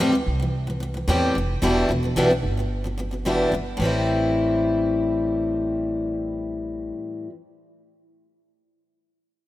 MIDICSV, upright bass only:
0, 0, Header, 1, 2, 480
1, 0, Start_track
1, 0, Key_signature, 0, "minor"
1, 0, Tempo, 542005
1, 1438, Time_signature, 4, 2, 24, 8
1, 8391, End_track
2, 0, Start_track
2, 0, Title_t, "Upright bass"
2, 0, Program_c, 0, 32
2, 0, Note_on_c, 0, 38, 80
2, 172, Note_off_c, 0, 38, 0
2, 235, Note_on_c, 0, 36, 70
2, 921, Note_off_c, 0, 36, 0
2, 954, Note_on_c, 0, 40, 78
2, 1152, Note_off_c, 0, 40, 0
2, 1201, Note_on_c, 0, 29, 71
2, 1396, Note_off_c, 0, 29, 0
2, 1438, Note_on_c, 0, 28, 82
2, 1635, Note_off_c, 0, 28, 0
2, 1675, Note_on_c, 0, 28, 81
2, 1873, Note_off_c, 0, 28, 0
2, 1916, Note_on_c, 0, 35, 76
2, 2151, Note_on_c, 0, 31, 66
2, 2164, Note_off_c, 0, 35, 0
2, 3078, Note_off_c, 0, 31, 0
2, 3115, Note_on_c, 0, 31, 64
2, 3313, Note_off_c, 0, 31, 0
2, 3359, Note_on_c, 0, 33, 71
2, 6117, Note_off_c, 0, 33, 0
2, 8391, End_track
0, 0, End_of_file